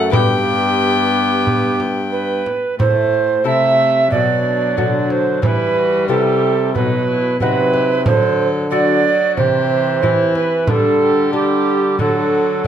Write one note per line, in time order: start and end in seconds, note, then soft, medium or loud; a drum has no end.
0.00 0.12 F#2 medium
0.00 0.14 A3 medium
0.00 0.10 F#4 soft
0.00 0.13 A4 medium
0.00 0.11 C5 medium
0.00 0.12 F#5 loud
0.11 2.43 G2 medium
0.11 2.44 G2 medium
0.11 2.59 B3 medium
0.11 2.75 G4 medium
0.11 1.80 G4 medium
0.11 2.75 B4 medium
0.11 2.42 G5 loud
0.11 frame drum medium
1.47 frame drum soft
1.80 frame drum soft
2.12 2.75 B4 medium
2.46 frame drum soft
2.79 3.41 A2 soft
2.79 3.42 A2 medium
2.79 3.41 A3 soft
2.79 3.44 C5 medium
2.79 frame drum medium
3.44 4.07 C3 soft
3.44 4.13 C3 medium
3.44 4.10 A3 medium
3.44 4.07 C4 soft
3.44 4.07 E4 soft
3.44 4.07 A4 soft
3.44 4.11 E5 medium
4.11 4.73 B2 soft
4.11 4.77 B2 medium
4.11 5.44 F#3 medium
4.11 4.42 F#4 medium
4.11 5.12 D5 medium
4.11 frame drum soft
4.44 5.41 D4 medium
4.77 5.39 B2 soft
4.77 5.42 D3 medium
4.77 5.39 D3 soft
4.77 5.39 D4 soft
4.77 5.40 F#4 soft
4.77 frame drum soft
5.10 5.42 C5 medium
5.10 frame drum soft
5.42 6.05 E3 medium
5.42 6.10 E3 medium
5.42 6.76 G3 medium
5.42 5.79 E4 medium
5.42 5.47 C5 medium
5.42 frame drum medium
5.46 6.08 B4 medium
5.77 6.10 F#4 medium
6.08 6.70 C3 soft
6.08 6.77 C3 medium
6.08 6.71 B3 soft
6.08 6.71 E4 soft
6.08 6.74 G4 medium
6.08 6.71 G4 soft
6.08 6.73 A4 medium
6.75 7.36 B2 soft
6.75 7.41 B2 medium
6.75 7.39 F#3 medium
6.75 7.07 D#4 medium
6.75 7.39 B4 medium
6.75 frame drum soft
7.09 7.40 E4 medium
7.40 8.03 C3 soft
7.40 8.08 C3 medium
7.40 8.05 F#3 medium
7.40 8.03 B3 soft
7.40 8.03 D#4 soft
7.40 7.73 F#4 medium
7.40 8.05 B4 medium
7.40 8.03 F#5 soft
7.40 frame drum soft
7.74 8.06 G4 medium
7.74 frame drum soft
8.06 9.10 D3 medium
8.06 9.06 D3 medium
8.06 8.70 F#3 medium
8.06 8.72 A4 medium
8.06 8.48 C5 medium
8.06 frame drum medium
8.70 9.38 F#3 medium
8.70 9.33 A3 soft
8.70 9.33 D4 soft
8.70 9.33 F#4 soft
8.70 9.04 F#4 medium
8.70 9.33 D5 medium
9.06 9.40 F#4 medium
9.37 10.04 C3 medium
9.37 9.99 C3 soft
9.37 10.68 E3 medium
9.37 10.02 G4 medium
9.37 10.33 C5 medium
9.37 frame drum soft
10.03 10.64 E3 soft
10.03 10.70 E3 medium
10.03 10.64 C4 soft
10.03 10.67 E4 medium
10.03 10.65 E4 soft
10.03 10.65 G4 soft
10.03 frame drum soft
10.35 10.72 B4 medium
10.35 frame drum soft
10.67 11.95 D3 medium
10.67 11.99 D3 medium
10.67 11.33 G3 medium
10.67 11.01 D4 medium
10.67 11.33 A4 medium
10.67 frame drum medium
11.02 11.98 G4 medium
11.33 12.00 G3 medium
11.33 11.95 D4 soft
11.33 11.95 G4 medium
11.33 11.98 G4 medium
11.99 12.64 D3 medium
11.99 12.61 D3 medium
11.99 12.67 F#3 medium
11.99 12.64 F#4 medium
11.99 12.64 A4 medium
11.99 frame drum soft